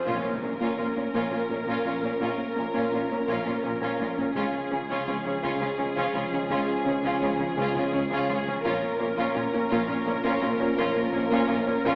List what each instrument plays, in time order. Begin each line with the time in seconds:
0.06 double bass section A#1, analog synth bass A#2, cello section A#2, trombone section F3 A#3, synth arpeggio sound A#3, viola section C#4, french horn section C#4 F4, violin section F4 A#4, impact
0.25 analog synth bass A#2
0.42 double bass section A#1, analog synth bass A#2, cello section A#2, violin section C#4, viola section C#4, synth arpeggio sound A#4
0.60 analog synth bass A#2, cello section A#2, synth arpeggio sound A#3, viola section C#4, violin section F4
0.78 double bass section A#1, analog synth bass A#2, cello section A#2, viola section C#4, synth arpeggio sound C#4, violin section F4
0.96 cello section A#2, analog synth bass A#2, viola section C#4, violin section C#4, synth arpeggio sound C#4
1.14 double bass section A#1, analog synth bass A#2, cello section A#2, synth arpeggio sound A#3, viola section C#4, violin section F4
1.32 analog synth bass A#2, cello section A#2, viola section C#4, violin section F4, synth arpeggio sound A#4
1.50 double bass section A#1, analog synth bass A#2, cello section A#2, viola section C#4, violin section C#4, synth arpeggio sound A#4
1.67 analog synth bass A#2, cello section A#2, synth arpeggio sound A#3, viola section C#4, violin section F4
1.85 double bass section A#1, analog synth bass A#2, cello section A#2, viola section C#4, synth arpeggio sound C#4, violin section F4
2.03 analog synth bass A#2, cello section A#2, violin section C#4, viola section C#4, synth arpeggio sound C#4
2.20 double bass section A#1, analog synth bass A#2, cello section A#2, synth arpeggio sound A#3, viola section C#4, violin section F4
2.38 analog synth bass A#2
2.56 double bass section A#1, analog synth bass A#2, cello section A#2, viola section C#4, violin section C#4, synth arpeggio sound A#4
2.73 analog synth bass A#2, cello section A#2, synth arpeggio sound A#3, viola section C#4, violin section F4
2.92 double bass section A#1, analog synth bass A#2, cello section A#2, viola section C#4, synth arpeggio sound C#4, violin section F4
3.09 analog synth bass A#2, cello section A#2, viola section C#4, violin section C#4, synth arpeggio sound C#4
3.27 double bass section A#1, analog synth bass A#2, cello section A#2, synth arpeggio sound A#3, viola section C#4, violin section F4
3.45 analog synth bass A#2, cello section A#2, viola section C#4, violin section F4, synth arpeggio sound A#4
3.63 double bass section A#1, analog synth bass A#2, cello section A#2, viola section C#4, violin section C#4, synth arpeggio sound A#4
3.81 analog synth bass A#2, cello section A#2, synth arpeggio sound A#3, viola section C#4, violin section F4
3.99 double bass section A#1, analog synth bass A#2, cello section A#2, viola section C#4, synth arpeggio sound C#4, violin section F4
4.17 analog synth bass A#2, cello section A#2, synth arpeggio sound C#4, viola section C#4, violin section C#4
4.35 analog synth bass C#2, double bass section C#2, synth arpeggio sound C#3, cello section C#3, trombone section F3 G#3, viola section C#4, french horn section C#4 F4, violin section F4 G#4
4.54 analog synth bass C#2
4.71 analog synth bass C#2, double bass section C#2, cello section C#3, viola section C#4, synth arpeggio sound C#4, violin section C#4
4.89 analog synth bass C#2, synth arpeggio sound C#3, cello section C#3, viola section C#4, violin section F4
5.07 analog synth bass C#2, double bass section C#2, cello section C#3, synth arpeggio sound F3, viola section C#4, violin section F4
5.25 analog synth bass C#2, cello section C#3, synth arpeggio sound F3, violin section C#4, viola section C#4
5.43 analog synth bass C#2, double bass section C#2, synth arpeggio sound C#3, cello section C#3, viola section C#4, violin section F4
5.60 analog synth bass C#2, cello section C#3, synth arpeggio sound C#4, viola section C#4, violin section F4
5.79 analog synth bass C#2, double bass section C#2, cello section C#3, violin section C#4, synth arpeggio sound C#4, viola section C#4
5.96 analog synth bass C#2, synth arpeggio sound C#3, cello section C#3, viola section C#4, violin section F4
6.14 analog synth bass C#2, double bass section C#2, cello section C#3, synth arpeggio sound F3, viola section C#4, violin section F4
6.32 analog synth bass C#2, cello section C#3, synth arpeggio sound F3, viola section C#4, violin section C#4
6.49 analog synth bass C#2, double bass section C#2, synth arpeggio sound C#3, cello section C#3, viola section C#4, violin section F4
6.68 analog synth bass C#2
6.85 analog synth bass C#2, double bass section C#2, cello section C#3, viola section C#4, synth arpeggio sound C#4, violin section C#4
7.03 analog synth bass C#2, synth arpeggio sound C#3, cello section C#3, viola section C#4, violin section F4
7.21 analog synth bass C#2, double bass section C#2, cello section C#3, synth arpeggio sound F3, viola section C#4, violin section F4
7.38 analog synth bass C#2, cello section C#3, synth arpeggio sound F3, viola section C#4
7.43 violin section C#4
7.57 analog synth bass C#2, double bass section C#2, cello section C#3, synth arpeggio sound C#3, viola section C#4, violin section F4
7.75 analog synth bass C#2, cello section C#3, synth arpeggio sound C#4, viola section C#4, violin section F4
7.93 analog synth bass C#2, double bass section C#2, cello section C#3, viola section C#4, synth arpeggio sound C#4, violin section C#4
8.11 analog synth bass C#2, cello section C#3, synth arpeggio sound C#3, viola section C#4, violin section F4
8.28 analog synth bass C#2, double bass section C#2, cello section C#3, synth arpeggio sound F3, viola section C#4, violin section F4
8.46 analog synth bass C#2, cello section C#3, synth arpeggio sound F3, viola section C#4, violin section C#4
8.64 double bass section A#1, cello section A#2, analog synth bass A#2, trombone section F3 A#3, synth arpeggio sound A#3, french horn section C#4 F4, viola section C#4, violin section F4 A#4
8.83 analog synth bass A#2
8.99 double bass section A#1, cello section A#2, analog synth bass A#2, viola section C#4, violin section C#4, synth arpeggio sound A#4
9.17 cello section A#2, analog synth bass A#2, synth arpeggio sound A#3, viola section C#4, violin section F4
9.35 double bass section A#1, cello section A#2, analog synth bass A#2, synth arpeggio sound C#4, viola section C#4, violin section F4
9.53 cello section A#2, analog synth bass A#2, violin section C#4, viola section C#4, synth arpeggio sound C#4
9.70 double bass section A#1, cello section A#2, analog synth bass A#2, synth arpeggio sound A#3, viola section C#4, violin section F4
9.88 cello section A#2, analog synth bass A#2, viola section C#4, violin section F4, synth arpeggio sound A#4
10.06 double bass section A#1, cello section A#2, analog synth bass A#2, viola section C#4, violin section C#4, synth arpeggio sound A#4
10.23 cello section A#2, analog synth bass A#2, synth arpeggio sound A#3, viola section C#4, violin section F4
10.41 double bass section A#1, cello section A#2, analog synth bass A#2, viola section C#4, synth arpeggio sound C#4, violin section F4
10.59 cello section A#2, analog synth bass A#2, viola section C#4, violin section C#4, synth arpeggio sound C#4
10.77 double bass section A#1, cello section A#2, analog synth bass A#2, synth arpeggio sound A#3, viola section C#4, violin section F4
10.97 analog synth bass A#2
11.13 double bass section A#1, cello section A#2, analog synth bass A#2, violin section C#4, viola section C#4, synth arpeggio sound A#4
11.31 cello section A#2, analog synth bass A#2, synth arpeggio sound A#3, viola section C#4, violin section F4
11.49 double bass section A#1, cello section A#2, analog synth bass A#2, synth arpeggio sound C#4, viola section C#4, violin section F4
11.66 cello section A#2, analog synth bass A#2, synth arpeggio sound C#4, viola section C#4, violin section C#4
11.85 double bass section A#1, cello section A#2, analog synth bass A#2, synth arpeggio sound A#3, viola section C#4, violin section F4